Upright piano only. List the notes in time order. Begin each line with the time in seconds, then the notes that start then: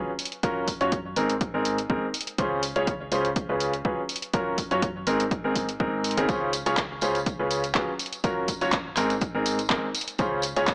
0.43 F#3 C#4 F4 F#4 A#4
0.81 F#3 C#4 F4 F#4 C#5
1.16 G#2 C4 D#4 G#4 A#4
1.54 G#2 C4 D#4 G#4 A#4
1.90 G#2 C4 D#4 G#4 A#4
2.38 C#3 C#4 F4 G#4 C5
2.76 C#3 C#4 F4 G#4 C#5
3.12 C#3 C#4 F4 G#4 C5
3.49 C#3 C#4 F4 G#4 B4
3.85 F#3 C#4 F4 G#4 B4
4.34 F#3 C#4 F4 F#4 A#4
4.71 F#3 C#4 F4 F#4 C#5
5.07 G#2 C4 D#4 G#4 A#4
5.44 G#2 C4 D#4 G#4 A#4
5.80 G#2 C4 D#4 G#4 A#4
6.17 C#3 C4 D#4 G#4 A#4
6.29 C#3 C#4 F4 G#4 C5
6.66 C#3 C#4 F4 G#4 C#5
7.02 C#3 C#4 F4 G#4 C5
7.39 C#3 C#4 F4 G#4 B4
7.75 F#3 C#4 F4 G#4 B4
8.24 F#3 C#4 F4 F#4 A#4
8.61 F#3 C#4 F4 F#4 C#5
8.97 G#2 C4 D#4 G#4 A#4
9.35 G#2 C4 D#4 G#4 A#4
9.70 G#2 C4 D#4 G#4 A#4
10.19 C#3 C#4 F4 G#4 C5
10.56 C#3 C#4 F4 G#4 C#5